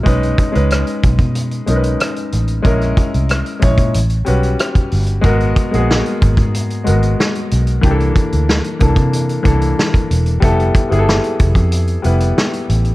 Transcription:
<<
  \new Staff \with { instrumentName = "Grand piano" } { \time 4/4 \key b \lydian \tempo 4 = 93 <gis cis' dis' b'>8 r16 <gis cis' dis' b'>4~ <gis cis' dis' b'>16 r8 <gis cis' dis' ais' b'>4 r8 | <gis cis' e' ais'>4 r8 <gis cis' e' cis''>8 r8 <g cis' fis' b'>4 r8 | <gis b fis' ais'>8 r16 <gis ais b fis' gis'>4~ <gis ais b fis' gis'>16 r8 <gis b fis' ais'>4 r8 | <e bes d' g' a'>4 r8 <e bes d' a'>8. r16 <e bes d' a'>4 r8 |
<g b e' a'>8 r16 <g b e' gis' a'>4~ <g b e' gis' a'>16 r8 <g b e' b'>4 r8 | }
  \new Staff \with { instrumentName = "Fingered electric bass" } { \clef bass \time 4/4 \key b \lydian b,,8 r16 cis,8 r16 b,,16 b,8. b,,8 r8 a,,8 | ais,,8 r16 bis,,8 r16 ais,,16 ais,16 a,,8 b,,8 r8 g,,8 | gis,,8 r16 ais,,8 r16 gis,,16 gis,8. gis,,8 r8 b,,8 | c,8 r16 d,8 r16 c,16 c8. c,8 r8 e,,8 |
f,,8 r16 g,,8 r16 f,,16 f,8. f,,8 r8 a,,8 | }
  \new DrumStaff \with { instrumentName = "Drums" } \drummode { \time 4/4 <hh bd>16 hh16 <hh bd>16 hh16 <hh ss>16 hh16 <hh bd>16 <hh bd>16 hh16 hh16 hh16 hh16 <hh ss>16 hh16 hh16 hh16 | <hh bd>16 <hh ss>16 <hh bd>16 hh16 <hh ss>16 hh16 <hh bd>16 <hh bd>16 hh16 hh16 hh16 hh16 <hh ss>16 <hh bd>16 hho16 hh16 | <hh bd>16 hh16 <hh bd>16 hh16 sn16 hh16 <hh bd>16 <hh bd>16 hh16 hh16 hh16 hh16 sn16 hh16 hh16 hh16 | <hh bd>16 hh16 <hh bd>16 hh16 sn16 hh16 <hh bd>16 <hh bd>16 hh16 hh16 <hh bd>16 hh16 sn16 <hh bd>16 hh16 hh16 |
<hh bd>16 hh16 <hh bd>16 hh16 sn16 hh16 <hh bd>16 <hh bd>16 hh16 hh16 hh16 hh16 sn16 hh16 hh16 hh16 | }
>>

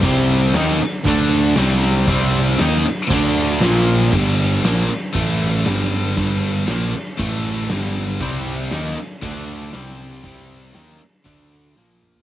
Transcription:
<<
  \new Staff \with { instrumentName = "Overdriven electric guitar" } { \clef bass \time 4/4 \key g \minor \tempo 4 = 118 <c g c'>4 <ees bes ees'>8 r8 <d a d'>4 <c g c'>4 | <c g c'>4 <ees bes ees'>8 r8 <d a d'>4 <bes, f bes>4 | r1 | r1 |
<c g c'>4 <ees bes ees'>8 r8 <d a d'>4 <c g c'>4 | <c g c'>4 <ees bes ees'>8 r8 <d a d'>4 <bes, f bes>4 | }
  \new Staff \with { instrumentName = "Distorted electric guitar" } { \clef bass \time 4/4 \key g \minor <c g c'>4 <ees bes ees'>8 r8 <d a d'>4 <c g c'>4 | <c g c'>4 <ees bes ees'>8 r8 <d a d'>4 <bes, f bes>4 | <g, d g>4 <bes, f bes>8 r8 <a, e a>4 <g, d g>4 | <g, d g>4 <bes, f bes>8 r8 <a, e a>4 <g, d g>4 |
<c g c'>4 <ees bes ees'>8 r8 <d a d'>4 <c g c'>4 | <c g c'>4 <ees bes ees'>8 r8 <d a d'>4 <bes, f bes>4 | }
  \new Staff \with { instrumentName = "Distorted electric guitar" } { \clef bass \time 4/4 \key g \minor <c g c'>4 <ees bes ees'>8 r8 <d a d'>4 <c g c'>4 | <c g c'>4 <ees bes ees'>8 r8 <d a d'>4 <bes, f bes>4 | <g, d g>4 <bes, f bes>8 r8 <a, e a>4 <g, d g>4 | <g, d g>4 <bes, f bes>8 r8 <a, e a>4 <g, d g>4 |
<c g c'>4 <ees bes ees'>8 r8 <d a d'>4 <c g c'>4 | <c g c'>4 <ees bes ees'>8 r8 <d a d'>4 <bes, f bes>4 | }
  \new Staff \with { instrumentName = "Picked electric bass" } { \clef bass \time 4/4 \key g \minor c,4 ees,8 r8 d,4 c,4 | c,4 ees,8 r8 d,4 bes,,4 | g,,4 bes,,8 r8 a,,4 g,,4 | g,,4 bes,,8 r8 a,,4 g,,4 |
c,4 ees,8 r8 d,4 c,4 | c,4 ees,8 r8 d,4 bes,,4 | }
  \new DrumStaff \with { instrumentName = "Drums" } \drummode { \time 4/4 <cymc bd>8 cymc8 <cymc sn>8 cymc8 <cymc bd>8 <cymc sn>8 <cymc sn>8 cymc8 | <cymc bd>8 cymc8 <cymc sn>8 cymc8 <cymc bd>8 <cymc sn>8 <cymc sn>8 cymc8 | <cymc bd>8 cymc8 <cymc sn>8 cymc8 <cymc bd>8 <cymc sn>8 <cymc sn>8 cymc8 | <cymc bd>8 cymc8 <cymc sn>8 cymc8 <cymc bd>8 <cymc sn>8 <cymc sn>8 cymc8 |
<cymc bd>8 cymc8 <cymc sn>8 cymc8 <cymc bd>8 <cymc sn>8 <cymc sn>8 cymc8 | <cymc bd>8 cymc8 <cymc sn>8 cymc8 <cymc bd>8 <cymc sn>8 sn8 toml16 tomfh16 | }
>>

